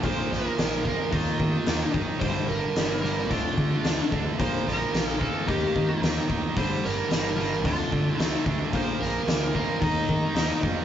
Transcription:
0.03 A#1 A#2 D3 F3 A#3 C5, kick, open hi-hat
0.31 A#1 A#2 D3 A#4, snare
0.58 A#1 A#2 D3 F3 A#3, snare, open hi-hat
0.85 A#2 D3 F3 A#3 A#4, kick
1.12 D#2 D#3 A#3 D#4 F4, kick, open hi-hat
1.39 D#3 A#3, kick
1.66 D#2 D#3 A#3 D#4, snare, open hi-hat
1.94 F#2 D#3 A#3 D#4, kick
2.20 G1 G2 D3 C5, kick, open hi-hat
2.25 G3
2.47 G1 G2 D3 A#4
2.75 G1 G2 D3 G3, snare, open hi-hat
3.01 G2 D3 A#4, snare
3.06 G3
3.27 D2 D3 C4 F4, kick, open hi-hat
3.31 A3 D4
3.57 D3 A3, kick
3.84 D2 D3 A3 D4, snare, open hi-hat
4.12 D2 D3 A3 D4, kick
4.39 A#1 A#2 D3 F3 A#3 C5, kick, open hi-hat
4.65 A#1 A#2 D3 A#4, snare
4.93 A#1 A#2 D3 F3 A#3, snare, open hi-hat
5.08 A4
5.19 A#2 D3 F3 A#3 A4, kick
5.47 D#2 D#3 A#3 D#4 G4, kick, open hi-hat
5.75 D#3 A#3, kick
6.01 D#2 D#3 A#3 D#4, snare, open hi-hat
6.28 D#2 D#3 A#3 D#4, kick
6.56 G1 G2 D3 G3 C5, kick, open hi-hat
6.82 G1 G2 D3 A#4, snare
7.09 G1 G2 D3 G3 A#4, snare, open hi-hat
7.36 G2 D3 G3 A#4, snare
7.64 D2 D3 A3 C4 D4 F4, kick, open hi-hat
7.91 D3 A3, kick
8.18 D2 D3 A3 D4 D#4, snare, open hi-hat
8.45 D2 D3 A3 D4, kick
8.72 A#1 A#2 D3 F3 A#3, kick, open hi-hat
8.76 C5
8.99 A#1 A#2 D3 A#4, snare
9.27 D2 A#2 D3 F3 A#3, snare, open hi-hat
9.54 A#2 D3 F3 A#3 A#4, kick
9.80 D#2 D#3 A#3 D#4, kick, open hi-hat
10.09 D#3 A#3, kick
10.35 D#2 D#3 A#3 D#4, snare, open hi-hat
10.62 F2 D#3 A#3 D#4, kick

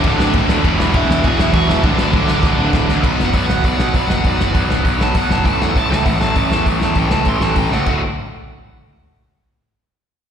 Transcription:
Already playing: D2 A2 D3 D4 D5
0.04 D1 D2 A2 D3, kick, crash
0.18 D1 D2 A2 D3, snare
0.33 D1 D2 A2 D3, kick, crash
0.48 D2 A2 D3, snare
0.63 E1 E2 B2 E3, kick, crash
0.78 E1 E2 B2 E3, snare
0.93 E1 E2 B2 E3 E4 E5, kick, crash
1.08 E1 E2 B2 E3, snare
1.23 E1 E2 B2 E3 G#4 G#5, kick, crash
1.39 E2 B2 E3 E4 E5, snare
1.53 E1 E2 B2 E3 F#4 F#5, kick, crash
1.67 E1 E2 B2 E3 E4 E5, snare
1.82 D1 D2 A2 D3 D4 D5, kick, crash
1.96 D1 D2 A2 D3, snare
2.13 D1 D2 A2 D3, kick, crash
2.28 D2 A2 D3, snare
2.43 D1 D2 A2 D3, kick, snare
2.57 D1 D2 A2 D3
2.73 D1 D2 A2 D3, kick, snare
2.88 D2 A2 D3, snare
3.03 B1 B2 F#3 B3, kick, crash
3.17 F#1, snare
3.25 F#5
3.33 B1 B2 F#3 B3 D5, kick, open hi-hat
3.43 D1 F#5
3.49 B2 F#3 B3, snare
3.56 F#5
3.64 B1 B2 F#3 B3 D5, kick, open hi-hat
3.77 B1 F#5, snare
3.87 F#5
3.94 B1 B2 F#3 B3 D5, kick, open hi-hat
4.07 F#1 B2 F#3 B3 F#5, snare
4.17 F#5
4.24 B1 B2 F#3 B3 D5, kick, open hi-hat
4.37 F#1 F#5, snare
4.47 D5
4.54 B1 B2 F#3 B3, kick, open hi-hat
4.68 D1 B2 F#3 B3, snare
4.84 B1 B2 F#3 B3, kick, open hi-hat
4.99 B1 A5, snare
5.14 B1 B2 F#3 B3 F#5, kick, open hi-hat
5.30 F#1 B2 F#3 B3 A5, snare
5.45 A1 A2 E3 A3 A5, kick, open hi-hat
5.59 E2 F#5, snare
5.75 A1 A2 E3 A3 A5, kick, open hi-hat
5.90 C#2 A2 E3 A3 A5, snare
6.05 A1 A2 E3 A3 F#5, kick, open hi-hat
6.20 A1 A5, snare
6.36 A1 A2 E3 A3 A5, kick, open hi-hat
6.50 E2 A2 E3 A3, snare
6.65 A1 A2 E3 A3, kick, open hi-hat
6.80 E2 A5, snare
6.95 A1 A2 E3 A3 G5, kick, open hi-hat
7.10 C#2 A2 E3 A3 A5, snare
7.25 A1 A2 E3 A3 C6, kick, open hi-hat
7.40 A1 A5, snare
7.56 A1 A2 E3 A3 G5, kick, open hi-hat
7.69 C#2 A2 E3 A3 F#5, snare
7.86 D1 D2 A2 D3 A3 F#4, kick, crash

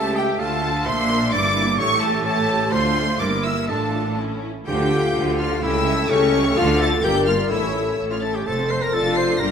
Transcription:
Already playing: C#2 A3 G4 A4 E5 A5
0.15 A3 G4 G5
0.39 D2 A3 F4 A4 F5 A5
0.62 A3 F4
0.85 A#1 A#2 A#3 D4 C5 E5 C6
1.09 A#3 D4
1.32 G1 G2 A#3 E4 D5 D6
1.55 A#3 E4
1.78 A1 A2 A3 G4 A4 C#5 C#6
2.01 A3 G4 A4 A5
2.25 A3 G4 A4 C#5 A5
2.48 A3 G4
2.71 D2 A3 F4 C5 C6
2.97 A3 F4
3.19 G1 G2 A#3 E4 A#4 D5 D6
3.44 A#3 E4 E5 E6
3.69 A1 A2 D4 F4 A4 A5
3.94 D4 F4
4.18 C#4 E4
4.43 C#4 E4
4.67 D2 D3 F3 A3 F4 G4 F5 G5 G6
4.80 A3 D4
4.92 F3 F4
5.04 A3 D4
5.15 D2 D3 F3 F4
5.28 A3 D4
5.39 F3 F4 F5 F6
5.52 A3 D4
5.62 C#2 C#3 G3 A3 E4 G4 A4 E5 G5 E6
5.75 A3 A4
5.87 G3 G4
5.98 A3 A4
6.09 C#2 C#3 G3 A3 C#4 G4 C#5 G5 C#6
6.22 A3 A4
6.34 G3 G4
6.46 A3 A4
6.56 D2 D3 A3 F4 A4 F5 F6
6.69 D4 F4
6.80 F4 A4 E5 A5 A6
6.92 D4 F4
7.03 G1 G2 A#3 G4 A#4 D5 G5 G6
7.16 D4 G4
7.26 A#3 F4 A#4 F5 F6
7.40 D4 G4
7.50 A1 A2 A3 E4 A4 C#5 E5 E6
7.63 C#4 C#5
7.76 E4 A4
7.88 C#4 C#5
7.99 A1 A2 E4 A4
8.10 C#4 F4 C#5 F5 F6
8.22 E4 A4 A5 A6
8.35 C#4 G4 C#5 G5 G6
8.45 F1 F2 A3 A4 C5 A5 A6
8.60 C4 C5
8.70 A3 A4 C5 C6 C7
8.82 C4 A#4 C5 A#5 A#6
8.93 F1 F2 F4 A4 D5 A5 A6
9.06 D4 F4
9.16 F4 A4 C5 C6 C7
9.29 D4 F4
9.39 G1 G2 G3 A#3 D4 G4 A#4 A#5 A#6

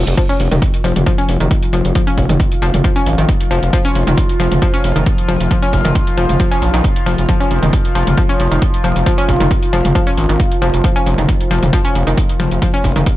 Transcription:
Already playing: F3 F4
0.07 F1, closed hi-hat
0.17 F3, kick, closed hi-hat
0.29 C#4, closed hi-hat
0.40 F1, open hi-hat
0.51 F1 D#3, closed hi-hat, mid tom
0.62 kick, closed hi-hat
0.74 closed hi-hat
0.84 F1 F3, open hi-hat
0.96 F1, closed hi-hat, mid tom
1.06 F3, kick, closed hi-hat
1.18 C#4, closed hi-hat
1.29 F1, open hi-hat
1.40 F1 D#3, closed hi-hat
1.51 kick, closed hi-hat
1.63 closed hi-hat
1.73 F1 F3, open hi-hat
1.85 F1, closed hi-hat
1.95 F3, kick, closed hi-hat
2.07 C#4, closed hi-hat
2.17 F1, kick, open hi-hat
2.29 F1 D#3, closed hi-hat, mid tom
2.40 kick, closed hi-hat
2.52 closed hi-hat
2.62 F1 F3, open hi-hat
2.74 F1, closed hi-hat, mid tom
2.84 F3, kick, closed hi-hat
2.96 C#4, closed hi-hat
3.06 G#1, open hi-hat
3.18 G#1 D#3, closed hi-hat
3.29 kick, closed hi-hat
3.40 closed hi-hat
3.51 F1 F3, open hi-hat
3.63 F1, closed hi-hat
3.73 F3, kick, closed hi-hat
3.85 C#4, closed hi-hat
3.95 F1, open hi-hat
4.07 F1 D#3, closed hi-hat, mid tom
4.17 kick, closed hi-hat
4.29 closed hi-hat
4.40 F1 F3, open hi-hat
4.52 F1, closed hi-hat, mid tom
4.62 F3, kick, closed hi-hat
4.74 C#4, closed hi-hat
4.84 F1, open hi-hat
4.96 F1 D#3, closed hi-hat
5.06 kick, closed hi-hat
5.18 closed hi-hat
5.28 F1 F3, open hi-hat
5.40 F1, closed hi-hat
5.51 F3, kick, closed hi-hat
5.62 C#4, closed hi-hat
5.73 F1, kick, open hi-hat
5.85 F1 D#3, closed hi-hat, mid tom
5.95 kick, closed hi-hat
6.07 closed hi-hat
6.17 F1 F3, open hi-hat
6.29 F1, closed hi-hat, mid tom
6.40 F3, kick, closed hi-hat
6.51 C#4, closed hi-hat
6.62 A#1, open hi-hat
6.74 A#1 D#3, closed hi-hat
6.84 kick, closed hi-hat
6.96 closed hi-hat
7.06 F1 F3, open hi-hat
7.18 F1, closed hi-hat
7.29 F3, kick, closed hi-hat
7.40 C#4, closed hi-hat
7.51 F1, open hi-hat
7.63 F1 D#3, closed hi-hat, mid tom
7.73 kick, closed hi-hat
7.85 closed hi-hat
7.95 F1 F3, open hi-hat
8.07 F1, closed hi-hat, mid tom
8.17 F3, kick, closed hi-hat
8.29 C#4, closed hi-hat
8.40 F1, open hi-hat
8.51 F1 D#3, closed hi-hat
8.62 kick, closed hi-hat
8.74 closed hi-hat
8.84 F1 F3, open hi-hat
8.96 F1, closed hi-hat
9.06 F3, kick, closed hi-hat
9.18 C#4, closed hi-hat
9.29 F1, kick, open hi-hat
9.40 F1 D#3, closed hi-hat, mid tom
9.51 kick, closed hi-hat
9.63 closed hi-hat
9.73 F1 F3, open hi-hat
9.85 F1, closed hi-hat, mid tom
9.95 F3, kick, closed hi-hat
10.07 C#4, closed hi-hat
10.17 G#1, open hi-hat
10.29 G#1 D#3, closed hi-hat
10.40 kick, closed hi-hat
10.52 closed hi-hat
10.62 F1 F3, open hi-hat
10.74 F1, closed hi-hat
10.84 F3, kick, closed hi-hat
10.96 C#4, closed hi-hat
11.06 F1, open hi-hat
11.18 F1 D#3, closed hi-hat, mid tom
11.29 kick, closed hi-hat
11.41 closed hi-hat
11.51 F1 F3, open hi-hat
11.62 F1, closed hi-hat, mid tom
11.73 F3, kick, closed hi-hat
11.85 C#4, closed hi-hat
11.95 F1, open hi-hat
12.07 F1 D#3, closed hi-hat
12.17 kick, closed hi-hat
12.29 closed hi-hat
12.40 F1 F3, open hi-hat, mid tom
12.51 F1, closed hi-hat
12.62 F3, kick, closed hi-hat
12.74 C#4, closed hi-hat
12.84 F1, kick, open hi-hat
12.96 F1 D#3, closed hi-hat, mid tom
13.06 kick, closed hi-hat

